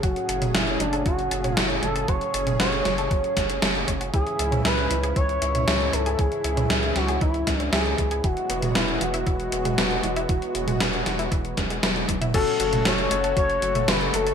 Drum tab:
CC |----------------|----------------|----------------|----------------|
HH |xxxxxxxxxxxxxxxx|xxxxxxxxxxxxxxxx|xxxxxxxxxxxxxxxx|xxxxxxxxxxxxxxxx|
SD |----o-------o---|----o-o---o-o---|----o-------o---|----o-o---o-o---|
T1 |----------------|----------------|----------------|----------------|
T2 |---o-------o----|---o------------|---o-------o----|---o------------|
BD |o-------o-------|o-------o-o---o-|o-------o-------|o-------o-o---o-|

CC |----------------|----------------|x---------------|
HH |xxxxxxxxxxxxxxxx|xxxxxxxxxxxxxxxx|xxxxxxxxxxxxxxxx|
SD |----o-------o---|----o-o---o-o---|----o-------o---|
T1 |----------------|------------oo--|----------------|
T2 |---o-------o----|---o-----------o|---o-------o----|
BD |o-------o-------|o-------o-o---o-|o-------o-------|